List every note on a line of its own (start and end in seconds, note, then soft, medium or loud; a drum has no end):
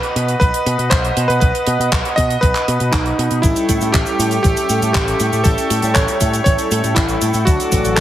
0.00 0.38 B4 loud
0.00 3.40 D#5 medium
0.00 3.40 F#5 medium
0.00 3.40 B5 medium
0.00 3.40 D#6 medium
0.00 closed hi-hat medium
0.16 0.34 B2 loud
0.16 closed hi-hat loud
0.28 closed hi-hat medium
0.40 0.50 B1 medium
0.40 0.92 B4 loud
0.40 kick loud
0.40 closed hi-hat medium
0.54 closed hi-hat medium
0.66 0.75 B2 medium
0.66 closed hi-hat medium
0.79 0.88 B2 medium
0.79 closed hi-hat soft
0.90 1.10 B1 medium
0.90 1.30 C5 loud
0.90 kick loud
0.90 clap loud
0.90 closed hi-hat medium
1.05 closed hi-hat medium
1.17 1.26 B2 medium
1.17 closed hi-hat loud
1.28 1.38 B2 medium
1.28 1.39 B4 loud
1.28 closed hi-hat soft
1.40 1.51 B1 loud
1.40 1.88 B4 medium
1.40 kick loud
1.40 closed hi-hat medium
1.55 closed hi-hat medium
1.67 1.76 B2 loud
1.67 closed hi-hat medium
1.80 1.89 B2 loud
1.80 closed hi-hat medium
1.92 2.01 B1 medium
1.92 kick loud
1.92 clap loud
1.92 closed hi-hat medium
2.05 closed hi-hat medium
2.16 2.36 B2 medium
2.16 2.43 D#5 loud
2.16 kick medium
2.16 closed hi-hat medium
2.30 closed hi-hat medium
2.41 2.52 B1 medium
2.41 2.94 B4 loud
2.41 kick loud
2.41 closed hi-hat medium
2.55 clap soft
2.55 closed hi-hat medium
2.68 2.77 B2 medium
2.68 closed hi-hat medium
2.80 2.90 B2 medium
2.80 closed hi-hat soft
2.92 3.11 B1 medium
2.92 3.44 D#4 medium
2.92 kick loud
2.92 clap loud
2.92 closed hi-hat medium
3.06 closed hi-hat medium
3.18 3.27 B2 medium
3.18 closed hi-hat medium
3.31 3.40 B2 medium
3.31 closed hi-hat medium
3.42 3.53 A1 loud
3.42 3.78 G3 medium
3.42 3.78 C#4 medium
3.42 3.95 E4 medium
3.42 3.78 E4 medium
3.42 3.78 A4 loud
3.42 8.00 A4 medium
3.42 7.43 E5 medium
3.42 7.43 G5 medium
3.42 7.43 C#6 medium
3.42 kick loud
3.42 closed hi-hat medium
3.42 cabasa medium
3.56 closed hi-hat soft
3.56 cabasa soft
3.69 3.78 A2 loud
3.69 kick medium
3.69 closed hi-hat loud
3.69 cabasa medium
3.81 3.90 A2 loud
3.81 4.16 G3 loud
3.81 4.16 C#4 medium
3.81 4.16 E4 medium
3.81 4.16 A4 loud
3.81 closed hi-hat soft
3.81 cabasa soft
3.92 4.03 A1 medium
3.92 4.41 G4 loud
3.92 kick loud
3.92 clap loud
3.92 closed hi-hat medium
3.92 cabasa medium
4.06 closed hi-hat medium
4.06 cabasa soft
4.19 4.37 A2 loud
4.19 4.41 G3 medium
4.19 4.41 C#4 medium
4.19 4.41 E4 medium
4.19 4.41 A4 loud
4.19 closed hi-hat loud
4.19 cabasa medium
4.31 closed hi-hat medium
4.31 cabasa soft
4.43 4.53 A1 medium
4.43 4.67 G3 medium
4.43 4.67 C#4 medium
4.43 4.67 E4 medium
4.43 4.92 G4 medium
4.43 4.67 A4 loud
4.43 kick loud
4.43 closed hi-hat medium
4.43 cabasa medium
4.57 closed hi-hat medium
4.57 cabasa soft
4.69 4.79 A2 medium
4.69 5.04 G3 loud
4.69 5.04 C#4 medium
4.69 5.04 E4 medium
4.69 5.04 A4 loud
4.69 closed hi-hat medium
4.69 cabasa medium
4.82 4.91 A2 medium
4.82 closed hi-hat medium
4.82 cabasa soft
4.93 5.13 A1 medium
4.93 5.46 G4 medium
4.93 kick loud
4.93 clap loud
4.93 closed hi-hat medium
4.93 cabasa medium
5.07 5.25 G3 medium
5.07 5.25 C#4 medium
5.07 5.25 E4 medium
5.07 5.25 A4 loud
5.07 closed hi-hat medium
5.07 cabasa soft
5.20 5.29 A2 medium
5.20 closed hi-hat medium
5.20 cabasa medium
5.33 5.42 A2 medium
5.33 closed hi-hat soft
5.33 cabasa soft
5.44 5.54 A1 medium
5.44 5.80 G3 loud
5.44 5.80 C#4 medium
5.44 5.80 E4 medium
5.44 5.96 A4 loud
5.44 5.80 A4 loud
5.44 kick loud
5.44 closed hi-hat medium
5.44 cabasa medium
5.58 closed hi-hat medium
5.58 cabasa soft
5.70 5.80 A2 loud
5.70 closed hi-hat loud
5.70 cabasa medium
5.82 5.92 A2 loud
5.82 6.18 G3 loud
5.82 6.18 C#4 medium
5.82 6.18 E4 medium
5.82 6.18 A4 loud
5.82 closed hi-hat medium
5.82 cabasa medium
5.94 6.05 A1 medium
5.94 6.43 C#5 loud
5.94 kick loud
5.94 clap loud
5.94 closed hi-hat medium
5.94 cabasa medium
6.08 closed hi-hat medium
6.08 cabasa soft
6.21 6.39 A2 loud
6.21 6.43 G3 medium
6.21 6.43 C#4 medium
6.21 6.43 E4 medium
6.21 6.43 A4 loud
6.21 kick medium
6.21 closed hi-hat medium
6.21 cabasa medium
6.33 closed hi-hat medium
6.33 cabasa soft
6.44 6.55 A1 medium
6.44 6.68 G3 medium
6.44 6.68 C#4 medium
6.44 6.68 E4 medium
6.44 6.68 A4 loud
6.44 6.97 C#5 loud
6.44 kick loud
6.44 closed hi-hat medium
6.44 cabasa medium
6.58 closed hi-hat medium
6.58 cabasa soft
6.71 6.80 A2 medium
6.71 7.06 G3 medium
6.71 7.06 C#4 medium
6.71 7.06 E4 medium
6.71 7.06 A4 loud
6.71 closed hi-hat loud
6.71 cabasa medium
6.84 6.93 A2 medium
6.84 closed hi-hat soft
6.84 cabasa soft
6.95 7.15 A1 loud
6.95 7.48 E4 medium
6.95 kick loud
6.95 clap loud
6.95 closed hi-hat medium
6.95 cabasa medium
7.08 7.27 G3 medium
7.08 7.27 C#4 medium
7.08 7.27 E4 medium
7.08 7.27 A4 loud
7.08 closed hi-hat medium
7.08 cabasa soft
7.21 7.31 A2 medium
7.21 closed hi-hat medium
7.21 cabasa medium
7.34 7.43 A2 medium
7.34 closed hi-hat medium
7.34 cabasa soft
7.45 7.56 D2 loud
7.45 7.82 F#3 medium
7.45 7.82 A3 medium
7.45 7.82 D4 medium
7.45 7.98 F#4 medium
7.45 7.82 A4 loud
7.45 8.00 D5 medium
7.45 8.00 F#5 medium
7.45 8.00 D6 medium
7.45 kick loud
7.45 closed hi-hat medium
7.45 cabasa medium
7.60 closed hi-hat medium
7.60 cabasa soft
7.72 7.81 A1 loud
7.72 kick medium
7.72 closed hi-hat loud
7.72 cabasa medium
7.85 7.94 A1 loud
7.85 8.00 F#3 loud
7.85 8.00 A3 medium
7.85 8.00 D4 loud
7.85 8.00 A4 loud
7.85 closed hi-hat medium
7.85 cabasa soft
7.96 8.00 A4 medium
7.96 kick loud
7.96 clap loud
7.96 closed hi-hat medium